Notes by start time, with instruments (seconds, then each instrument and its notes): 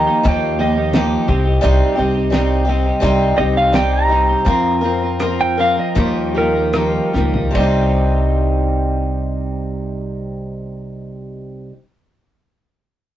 Already playing: clean electric guitar D#3 F3, steel-string acoustic guitar A#3 D#4 G4, pedal steel guitar A#5
0.07 clean electric guitar A#3 D#4 G4
0.23 upright bass D#2, steel-string acoustic guitar D#3 F3 A#3 D#4 G4, kick, closed hi-hat
0.28 pedal steel guitar G5
0.59 clean electric guitar F3 A#3 D#4 G4, pedal steel guitar D#5
0.76 clean electric guitar A#3 D#4 G4
0.93 clean electric guitar D#3 F3 A#3 D#4 G4, snare, closed hi-hat
1.28 upright bass C2, clean electric guitar C3 G3 C4 D#4 G4, kick
1.45 clean electric guitar C4 D#4 G4
1.62 upright bass C2, clean electric guitar C3 G3 C4 D#4 G4, closed hi-hat
1.97 upright bass C2, clean electric guitar G3 C4 D#4 G4
2.14 clean electric guitar C4 D#4 G4
2.32 clean electric guitar C3 G3 C4 D#4 G4, snare, closed hi-hat
2.65 clean electric guitar G3, steel-string acoustic guitar G4
2.69 clean electric guitar C4 D#4 G4
2.86 clean electric guitar C4 D#4 G4
3.00 upright bass C2, steel-string acoustic guitar C3 G3 C4 D#4 G4, kick, closed hi-hat
3.36 upright bass C2, clean electric guitar G3 C4 D#4, steel-string acoustic guitar G4, pedal steel guitar D#5
3.41 clean electric guitar G4
3.57 clean electric guitar C4 D#4 G4, pedal steel guitar F5
3.73 clean electric guitar C3 G3 C4 D#4 G4, pedal steel guitar G5, snare, closed hi-hat
3.94 pedal steel guitar A#5
4.08 clean electric guitar G3 C4 D#4, steel-string acoustic guitar G4
4.13 clean electric guitar G4
4.29 clean electric guitar C4 D#4 G4
4.46 upright bass F2, clean electric guitar F3 C4 F4 A#4, kick, closed hi-hat
4.81 clean electric guitar F3 C4, steel-string acoustic guitar A#4
4.85 clean electric guitar F4 A#4
5.02 clean electric guitar C4 F4 A#4
5.20 clean electric guitar F3 C4 F4 A#4, cross-stick, closed hi-hat
5.41 pedal steel guitar G5
5.58 clean electric guitar F3 C4 F4 A#4, pedal steel guitar F5
5.76 clean electric guitar C4 F4 A#4, pedal steel guitar D#5
5.96 upright bass D#2, clean electric guitar D#3 F3 G3 D#4 A#4, steel-string acoustic guitar A#3 F4 G4, kick, closed hi-hat
6.34 clean electric guitar F3 G3 D#4 A#4, steel-string acoustic guitar A#3 F4 G4, pedal steel guitar A#4
6.55 clean electric guitar G3 D#4 A#4
6.73 clean electric guitar D#3 F3 G3 D#4 A#4, steel-string acoustic guitar A#3 F4 G4, cross-stick, closed hi-hat
7.13 upright bass C#2, clean electric guitar F3 G3 D#4 A#4, steel-string acoustic guitar A#3 F4 G4, snare
7.33 clean electric guitar G3 D#4 A#4, floor tom
7.53 upright bass C2, clean electric guitar C3 G3 C4 D#4 G4, kick, ride
7.60 steel-string acoustic guitar D#4 G4